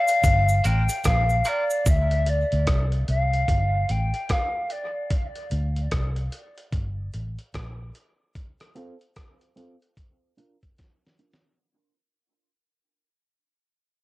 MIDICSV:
0, 0, Header, 1, 6, 480
1, 0, Start_track
1, 0, Key_signature, -1, "minor"
1, 0, Tempo, 810811
1, 1102, Time_signature, 4, 2, 24, 8
1, 8308, End_track
2, 0, Start_track
2, 0, Title_t, "Flute"
2, 0, Program_c, 0, 73
2, 0, Note_on_c, 0, 77, 107
2, 388, Note_on_c, 0, 79, 102
2, 397, Note_off_c, 0, 77, 0
2, 633, Note_on_c, 0, 77, 97
2, 642, Note_off_c, 0, 79, 0
2, 874, Note_on_c, 0, 74, 98
2, 883, Note_off_c, 0, 77, 0
2, 1113, Note_on_c, 0, 76, 99
2, 1122, Note_off_c, 0, 74, 0
2, 1355, Note_on_c, 0, 74, 83
2, 1364, Note_off_c, 0, 76, 0
2, 1687, Note_off_c, 0, 74, 0
2, 1828, Note_on_c, 0, 77, 98
2, 2313, Note_on_c, 0, 79, 93
2, 2322, Note_off_c, 0, 77, 0
2, 2554, Note_on_c, 0, 77, 86
2, 2563, Note_off_c, 0, 79, 0
2, 2791, Note_on_c, 0, 74, 92
2, 2799, Note_off_c, 0, 77, 0
2, 3027, Note_off_c, 0, 74, 0
2, 8308, End_track
3, 0, Start_track
3, 0, Title_t, "Clean electric guitar"
3, 0, Program_c, 1, 27
3, 379, Note_on_c, 1, 62, 80
3, 384, Note_on_c, 1, 65, 82
3, 388, Note_on_c, 1, 70, 92
3, 487, Note_off_c, 1, 62, 0
3, 490, Note_off_c, 1, 65, 0
3, 492, Note_off_c, 1, 70, 0
3, 859, Note_on_c, 1, 62, 75
3, 863, Note_on_c, 1, 65, 73
3, 867, Note_on_c, 1, 70, 84
3, 968, Note_off_c, 1, 62, 0
3, 969, Note_off_c, 1, 65, 0
3, 971, Note_off_c, 1, 70, 0
3, 5182, Note_on_c, 1, 60, 67
3, 5187, Note_on_c, 1, 65, 69
3, 5190, Note_on_c, 1, 69, 77
3, 5290, Note_off_c, 1, 60, 0
3, 5292, Note_off_c, 1, 65, 0
3, 5294, Note_off_c, 1, 69, 0
3, 5659, Note_on_c, 1, 60, 76
3, 5665, Note_on_c, 1, 65, 76
3, 5669, Note_on_c, 1, 69, 88
3, 5769, Note_off_c, 1, 60, 0
3, 5772, Note_off_c, 1, 65, 0
3, 5774, Note_off_c, 1, 69, 0
3, 6141, Note_on_c, 1, 62, 76
3, 6146, Note_on_c, 1, 65, 86
3, 6151, Note_on_c, 1, 70, 82
3, 6250, Note_off_c, 1, 62, 0
3, 6253, Note_off_c, 1, 65, 0
3, 6255, Note_off_c, 1, 70, 0
3, 6624, Note_on_c, 1, 62, 72
3, 6626, Note_on_c, 1, 65, 75
3, 6632, Note_on_c, 1, 70, 74
3, 6731, Note_off_c, 1, 62, 0
3, 6733, Note_off_c, 1, 65, 0
3, 6736, Note_off_c, 1, 70, 0
3, 8308, End_track
4, 0, Start_track
4, 0, Title_t, "Fingered electric bass"
4, 0, Program_c, 2, 33
4, 141, Note_on_c, 2, 31, 97
4, 351, Note_off_c, 2, 31, 0
4, 386, Note_on_c, 2, 33, 85
4, 512, Note_off_c, 2, 33, 0
4, 625, Note_on_c, 2, 34, 89
4, 833, Note_off_c, 2, 34, 0
4, 1103, Note_on_c, 2, 38, 106
4, 1440, Note_off_c, 2, 38, 0
4, 1495, Note_on_c, 2, 38, 73
4, 1574, Note_off_c, 2, 38, 0
4, 1584, Note_on_c, 2, 36, 95
4, 1792, Note_off_c, 2, 36, 0
4, 1826, Note_on_c, 2, 36, 96
4, 2033, Note_off_c, 2, 36, 0
4, 2062, Note_on_c, 2, 31, 94
4, 2271, Note_off_c, 2, 31, 0
4, 2307, Note_on_c, 2, 33, 89
4, 2433, Note_off_c, 2, 33, 0
4, 3267, Note_on_c, 2, 38, 93
4, 3475, Note_off_c, 2, 38, 0
4, 3505, Note_on_c, 2, 36, 82
4, 3714, Note_off_c, 2, 36, 0
4, 3984, Note_on_c, 2, 31, 92
4, 4193, Note_off_c, 2, 31, 0
4, 4229, Note_on_c, 2, 33, 84
4, 4355, Note_off_c, 2, 33, 0
4, 4468, Note_on_c, 2, 34, 74
4, 4675, Note_off_c, 2, 34, 0
4, 8308, End_track
5, 0, Start_track
5, 0, Title_t, "Muted clean electric guitar strokes"
5, 48, Note_on_c, 9, 29, 47
5, 107, Note_off_c, 9, 29, 0
5, 8308, End_track
6, 0, Start_track
6, 0, Title_t, "Drums"
6, 46, Note_on_c, 9, 69, 63
6, 54, Note_on_c, 9, 42, 45
6, 106, Note_off_c, 9, 69, 0
6, 113, Note_off_c, 9, 42, 0
6, 140, Note_on_c, 9, 69, 67
6, 141, Note_on_c, 9, 36, 105
6, 143, Note_on_c, 9, 42, 89
6, 199, Note_off_c, 9, 69, 0
6, 200, Note_off_c, 9, 36, 0
6, 203, Note_off_c, 9, 42, 0
6, 288, Note_on_c, 9, 69, 51
6, 347, Note_off_c, 9, 69, 0
6, 381, Note_on_c, 9, 42, 72
6, 383, Note_on_c, 9, 69, 45
6, 440, Note_off_c, 9, 42, 0
6, 442, Note_off_c, 9, 69, 0
6, 526, Note_on_c, 9, 69, 69
6, 529, Note_on_c, 9, 42, 52
6, 585, Note_off_c, 9, 69, 0
6, 588, Note_off_c, 9, 42, 0
6, 617, Note_on_c, 9, 69, 68
6, 618, Note_on_c, 9, 42, 72
6, 624, Note_on_c, 9, 36, 102
6, 625, Note_on_c, 9, 37, 106
6, 676, Note_off_c, 9, 69, 0
6, 677, Note_off_c, 9, 42, 0
6, 683, Note_off_c, 9, 36, 0
6, 684, Note_off_c, 9, 37, 0
6, 767, Note_on_c, 9, 69, 53
6, 826, Note_off_c, 9, 69, 0
6, 856, Note_on_c, 9, 69, 49
6, 859, Note_on_c, 9, 42, 64
6, 915, Note_off_c, 9, 69, 0
6, 918, Note_off_c, 9, 42, 0
6, 1008, Note_on_c, 9, 69, 71
6, 1067, Note_off_c, 9, 69, 0
6, 1100, Note_on_c, 9, 69, 73
6, 1101, Note_on_c, 9, 42, 76
6, 1102, Note_on_c, 9, 36, 111
6, 1159, Note_off_c, 9, 69, 0
6, 1160, Note_off_c, 9, 42, 0
6, 1161, Note_off_c, 9, 36, 0
6, 1249, Note_on_c, 9, 42, 51
6, 1308, Note_off_c, 9, 42, 0
6, 1340, Note_on_c, 9, 42, 69
6, 1399, Note_off_c, 9, 42, 0
6, 1491, Note_on_c, 9, 42, 49
6, 1550, Note_off_c, 9, 42, 0
6, 1580, Note_on_c, 9, 42, 90
6, 1583, Note_on_c, 9, 36, 109
6, 1583, Note_on_c, 9, 37, 119
6, 1639, Note_off_c, 9, 42, 0
6, 1642, Note_off_c, 9, 36, 0
6, 1642, Note_off_c, 9, 37, 0
6, 1728, Note_on_c, 9, 42, 39
6, 1787, Note_off_c, 9, 42, 0
6, 1823, Note_on_c, 9, 42, 66
6, 1882, Note_off_c, 9, 42, 0
6, 1974, Note_on_c, 9, 42, 42
6, 2033, Note_off_c, 9, 42, 0
6, 2061, Note_on_c, 9, 36, 96
6, 2064, Note_on_c, 9, 42, 83
6, 2120, Note_off_c, 9, 36, 0
6, 2124, Note_off_c, 9, 42, 0
6, 2304, Note_on_c, 9, 42, 74
6, 2363, Note_off_c, 9, 42, 0
6, 2450, Note_on_c, 9, 42, 48
6, 2509, Note_off_c, 9, 42, 0
6, 2541, Note_on_c, 9, 42, 85
6, 2545, Note_on_c, 9, 36, 102
6, 2548, Note_on_c, 9, 37, 114
6, 2600, Note_off_c, 9, 42, 0
6, 2604, Note_off_c, 9, 36, 0
6, 2608, Note_off_c, 9, 37, 0
6, 2782, Note_on_c, 9, 42, 62
6, 2841, Note_off_c, 9, 42, 0
6, 3022, Note_on_c, 9, 42, 83
6, 3023, Note_on_c, 9, 36, 94
6, 3082, Note_off_c, 9, 36, 0
6, 3082, Note_off_c, 9, 42, 0
6, 3170, Note_on_c, 9, 42, 45
6, 3230, Note_off_c, 9, 42, 0
6, 3263, Note_on_c, 9, 42, 65
6, 3322, Note_off_c, 9, 42, 0
6, 3412, Note_on_c, 9, 42, 46
6, 3472, Note_off_c, 9, 42, 0
6, 3501, Note_on_c, 9, 42, 87
6, 3504, Note_on_c, 9, 36, 102
6, 3505, Note_on_c, 9, 37, 121
6, 3561, Note_off_c, 9, 42, 0
6, 3563, Note_off_c, 9, 36, 0
6, 3564, Note_off_c, 9, 37, 0
6, 3649, Note_on_c, 9, 42, 40
6, 3708, Note_off_c, 9, 42, 0
6, 3743, Note_on_c, 9, 42, 69
6, 3803, Note_off_c, 9, 42, 0
6, 3893, Note_on_c, 9, 42, 41
6, 3953, Note_off_c, 9, 42, 0
6, 3981, Note_on_c, 9, 36, 107
6, 3982, Note_on_c, 9, 42, 82
6, 4040, Note_off_c, 9, 36, 0
6, 4042, Note_off_c, 9, 42, 0
6, 4224, Note_on_c, 9, 42, 63
6, 4283, Note_off_c, 9, 42, 0
6, 4372, Note_on_c, 9, 42, 52
6, 4432, Note_off_c, 9, 42, 0
6, 4464, Note_on_c, 9, 42, 75
6, 4466, Note_on_c, 9, 36, 96
6, 4471, Note_on_c, 9, 37, 111
6, 4523, Note_off_c, 9, 42, 0
6, 4526, Note_off_c, 9, 36, 0
6, 4531, Note_off_c, 9, 37, 0
6, 4706, Note_on_c, 9, 42, 65
6, 4765, Note_off_c, 9, 42, 0
6, 4945, Note_on_c, 9, 36, 100
6, 4945, Note_on_c, 9, 42, 78
6, 5004, Note_off_c, 9, 36, 0
6, 5004, Note_off_c, 9, 42, 0
6, 5092, Note_on_c, 9, 42, 47
6, 5096, Note_on_c, 9, 37, 60
6, 5151, Note_off_c, 9, 42, 0
6, 5156, Note_off_c, 9, 37, 0
6, 5184, Note_on_c, 9, 42, 63
6, 5243, Note_off_c, 9, 42, 0
6, 5334, Note_on_c, 9, 42, 44
6, 5393, Note_off_c, 9, 42, 0
6, 5423, Note_on_c, 9, 42, 84
6, 5425, Note_on_c, 9, 36, 101
6, 5426, Note_on_c, 9, 37, 119
6, 5482, Note_off_c, 9, 42, 0
6, 5484, Note_off_c, 9, 36, 0
6, 5485, Note_off_c, 9, 37, 0
6, 5571, Note_on_c, 9, 42, 40
6, 5630, Note_off_c, 9, 42, 0
6, 5665, Note_on_c, 9, 42, 72
6, 5724, Note_off_c, 9, 42, 0
6, 5814, Note_on_c, 9, 42, 44
6, 5874, Note_off_c, 9, 42, 0
6, 5903, Note_on_c, 9, 36, 91
6, 5905, Note_on_c, 9, 42, 81
6, 5962, Note_off_c, 9, 36, 0
6, 5964, Note_off_c, 9, 42, 0
6, 6146, Note_on_c, 9, 42, 66
6, 6205, Note_off_c, 9, 42, 0
6, 6292, Note_on_c, 9, 36, 80
6, 6292, Note_on_c, 9, 42, 49
6, 6351, Note_off_c, 9, 36, 0
6, 6351, Note_off_c, 9, 42, 0
6, 6384, Note_on_c, 9, 42, 78
6, 6387, Note_on_c, 9, 36, 99
6, 6391, Note_on_c, 9, 38, 54
6, 6443, Note_off_c, 9, 42, 0
6, 6446, Note_off_c, 9, 36, 0
6, 6450, Note_off_c, 9, 38, 0
6, 6551, Note_on_c, 9, 38, 60
6, 6611, Note_off_c, 9, 38, 0
6, 6625, Note_on_c, 9, 42, 59
6, 6684, Note_off_c, 9, 42, 0
6, 6711, Note_on_c, 9, 38, 90
6, 6770, Note_off_c, 9, 38, 0
6, 8308, End_track
0, 0, End_of_file